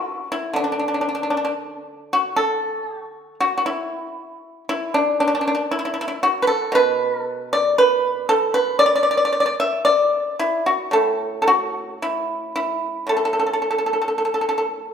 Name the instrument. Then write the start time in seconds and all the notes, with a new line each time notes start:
pipa
Already playing: F#4
0.32 E4
0.53 D3 D4
0.64 D4
0.72 D4
0.79 D4
0.88 D4
0.94 D4
1.01 D4
1.09 D4
1.15 D4
1.23 D4
1.30 D4
1.37 D4
1.45 D4
2.13 F#4
2.36 A4
3.01 F#4
3.40 F#4
3.58 F#4
3.66 E4
4.69 E4
4.94 D4
5.20 D4
5.27 D4
5.35 D4
5.41 D4
5.47 D4
5.55 D4
5.71 E4
5.79 E4
5.85 E4
5.94 E4
6.01 E4
6.08 E4
6.23 F#4
6.42 B4
6.47 A4
6.72 B2 B4
7.22 A4
7.53 D5
7.78 B4
8.29 A4
8.54 B4
8.79 D5
8.86 D5
8.96 D5
9.03 D5
9.11 D5
9.17 D5
9.25 D5
9.32 D5
9.40 D5
9.46 D5
9.60 E5
9.85 D5
10.39 E4
10.66 F#4
10.91 A2 A4
11.42 A4
11.48 F#4
12.02 E4
12.56 E4
13.07 A2 A4
13.17 A4
13.25 A4
13.33 A4
13.39 A4
13.46 A4
13.53 A4
13.62 A4
13.71 A4
13.78 A4
13.86 A4
13.93 A4
14.02 A4
14.08 A4
14.18 A4
14.25 A4
14.34 A4
14.41 A4
14.49 A4
14.58 A4